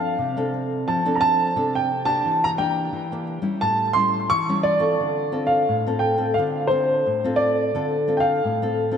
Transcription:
Already playing: F3 C4 D4 A4 F5
0.19 C3
0.37 C4 D4 A4
0.88 F3 A5
1.05 C4 D4 A4
1.15 A#5
1.21 A5
1.56 C3 C4 D4 A4
1.75 G5
2.05 A#3 D4 G4 A5
2.25 E3
2.44 A#5
2.58 A#3 D4 G4 G5
2.93 E3
3.12 A#3 D4 G4
3.42 G3 C#4 E4
3.61 A2 A5
3.93 G3 C#4 E4 C6
4.30 E3 C#6
4.49 G3 C#4 E4
4.63 D5
4.79 C4 F4 A4
5.00 D3
5.32 C4 F4 A4
5.47 F5
5.69 A2
5.87 C4 F4 A4
5.99 G5
6.18 C4 F4 A4
6.34 D3 C4 F5
6.38 F4 A4
6.67 C4 F4 C5
6.71 A4
7.06 A2
7.24 C4 F4 A4
7.36 D5
7.75 D3 C4 F4 A4
8.08 C4 F4 A4
8.17 F5 G5
8.44 A2
8.62 C4 F4 A4
8.91 C4 F4 A4

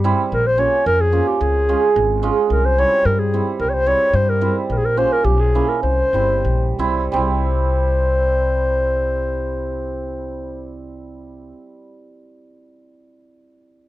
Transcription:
0.04 G3 C4 E4
0.32 A#1 A#4
0.47 C5
0.58 A#3 C#4 F4 C#5
0.86 F2 A#4
1.01 G#4
1.12 A#3 C#4 F4
1.28 G4
1.41 C#2 G#4
1.69 G#3 C#4 F4
1.96 G#1
2.23 G#3 C#4 F4
2.50 C2 A#4
2.65 C5
2.78 G3 C4 E4 C#5
3.05 G2 A#4
3.19 G#4
3.34 G3 C4 E4
3.60 C2 A#4
3.69 C#5
3.74 C5
3.86 G3 C4 E4 C#5
4.14 G2 C5
4.29 A#4
4.41 G3 C4 E4
4.70 A#1 A#4
4.77 G#4
4.85 A#4
4.97 A#3 C#4 F4 C5
5.13 A#4
5.25 B1 G4
5.40 G#4
5.55 A#3 C#4 E4
5.69 A#4
5.83 C2 C5
6.13 G1 G3 C4 E4
6.45 A#1
6.79 C2 G3 C4 E4
7.12 C2 G3 C4 C5
7.16 E4

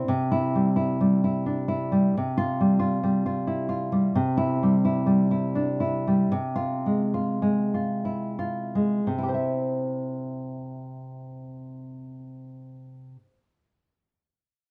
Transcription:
0.08 C3
0.32 E4
0.55 G3
0.76 E4
1.01 G3
1.24 E4
1.46 D4
1.68 E4
1.92 G3
2.17 C3
2.38 F4
2.61 G3
2.79 F4
3.03 G3
3.26 F4
3.47 E4
3.69 F4
3.92 G3
4.15 C3
4.37 E4
4.63 G3
4.85 E4
5.06 G3
5.31 E4
5.55 D4
5.80 E4
6.08 G3
6.32 C3
6.56 F4
6.86 G#3
7.14 F4
7.42 G#3
7.74 F4
8.05 E4
8.39 F4
8.75 G#3
9.07 C3
9.18 E4
9.23 G4
9.28 C5
9.34 E5

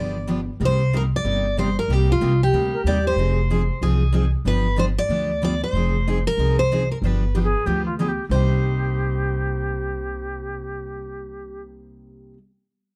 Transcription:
Already playing: G1 D3 F3 B3 D4 G4 D5
0.27 D3 F3 B3 D4 G4
0.60 C2 C3 G3 A#3 D#4 G4
0.65 C5
0.93 C3 G3 A#3 D#4 G4 A#4
1.16 D5
1.24 G1 C3 G3 A#3 D#4 G4
1.57 C3 G3 A#3 D#4 G4 C5
1.79 A#4
1.88 C2 C3 G3 A#3 D#4 G4
1.92 G4
2.12 F4
2.21 C2 C3 G3 A#3 D#4 G4
2.43 G4
2.52 D2 C3 G3 A#3 D#4 G4
2.73 A#4
2.84 D#2 C3 G3 A#3 D#4 G4 D5
3.07 C5
3.16 F1 F3 C4 D#4 G#4
3.50 F3 C4 D#4 G#4
3.81 C2 F3 C4 D#4 G#4
4.13 F3 C4 D#4 G#4
4.45 G1 D3 F3 B3 D4 G4 B4
4.76 D3 F3 B3 D4 G4 C5
4.98 D5
5.09 D2 D3 F3 B3 D4 G4
5.42 D3 F3 B3 D4 G4 D5
5.64 C5
5.73 F1 F3 C4 D#4 G#4
6.08 F3 C4 D#4 G#4
6.27 A#4
6.37 C2 F3 C4 D#4 G#4
6.59 C5
6.72 F3 C4 D#4 G#4
6.92 A#4
7.02 G1 D3 F3 B3 D4 G4 B4
7.34 D3 F3 B3 D4 G4
7.44 G#4
7.66 D2 D3 F3 B3 D4 G4
7.86 F4
7.98 D3 F3 B3 D4 G4 G#4
8.08 G4
8.29 C2 C3 G3 A#3 D#4 G4 C5
8.34 G4

